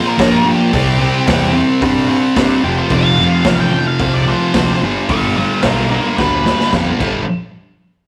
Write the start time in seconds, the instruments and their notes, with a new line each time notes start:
Already playing: distorted electric guitar A#2 F3 A#3
0.08 lead electric guitar A#4
0.17 picked electric bass G2, distorted electric guitar A#2 F3 A#3, kick, snare, open hi-hat
0.44 distorted electric guitar A#2 F3 A#3, lead electric guitar G4
0.73 picked electric bass C2, distorted electric guitar C3 G3 C4, kick, open hi-hat
0.99 distorted electric guitar C3 G3 C4
1.27 picked electric bass E2, distorted electric guitar C3 G3 C4, kick, snare, open hi-hat
1.53 distorted electric guitar C3 G3 C4
1.82 picked electric bass G2, distorted electric guitar C3 G3 C4, kick, open hi-hat
2.09 distorted electric guitar C3 G3 C4
2.35 picked electric bass G2, distorted electric guitar C3 G3 C4, kick, snare, open hi-hat
2.64 picked electric bass F1, distorted electric guitar F2 C3 F3, lead electric guitar G4
2.78 lead electric guitar C5
2.90 picked electric bass F1, distorted electric guitar F2 C3 F3, lead electric guitar D5, kick, open hi-hat
3.04 lead electric guitar F5
3.17 distorted electric guitar F2 C3 F3
3.44 picked electric bass A1, distorted electric guitar F2 C3 F3, kick, snare, open hi-hat
3.60 lead electric guitar G5
3.71 distorted electric guitar F2 C3 F3
3.87 lead electric guitar F5
3.98 picked electric bass C2, distorted electric guitar F2 C3 F3, kick, open hi-hat
4.14 lead electric guitar D5
4.26 distorted electric guitar F2 C3 F3, lead electric guitar C5
4.54 picked electric bass D2, distorted electric guitar F2 C3 F3, kick, snare, open hi-hat
4.82 picked electric bass G1, distorted electric guitar G2 D3 G3
5.09 picked electric bass G1, distorted electric guitar G2 D3 G3, lead electric guitar D5 F5, kick, open hi-hat
5.36 distorted electric guitar G2 D3 G3, lead electric guitar D5 F5
5.62 picked electric bass B1, distorted electric guitar G2 D3 G3, lead electric guitar F4 D5, kick, snare, open hi-hat
5.91 distorted electric guitar G2 D3 G3, lead electric guitar F4 D5
6.18 picked electric bass D2, distorted electric guitar G2 D3 G3, lead electric guitar B4, kick, snare
6.45 distorted electric guitar G2 D3 G3, snare
6.60 snare
6.73 picked electric bass F2, distorted electric guitar G2 D3 G3, kick, snare
6.99 picked electric bass G1, distorted electric guitar G2 D3 G3, kick, crash